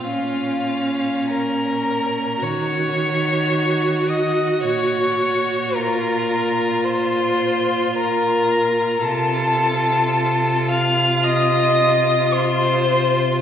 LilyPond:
<<
  \new Staff \with { instrumentName = "Violin" } { \time 4/4 \key bes \minor \tempo 4 = 54 f''4 bes''4 des'''4. ees'''8 | des'''4 bes''4 c'''4 bes''4 | a''4. f'''8 ees'''4 c'''4 | }
  \new Staff \with { instrumentName = "Violin" } { \time 4/4 \key bes \minor f'4 bes'4 des''4. ees''8 | des''4 bes'4 c''4 bes'4 | a'4. f''8 ees''4 c''4 | }
  \new Staff \with { instrumentName = "Viola" } { \time 4/4 \key bes \minor des'2 ges'2~ | ges'4 f'2. | f'1 | }
  \new Staff \with { instrumentName = "Cello" } { \clef bass \time 4/4 \key bes \minor bes,2 ees2 | bes,1 | c1 | }
>>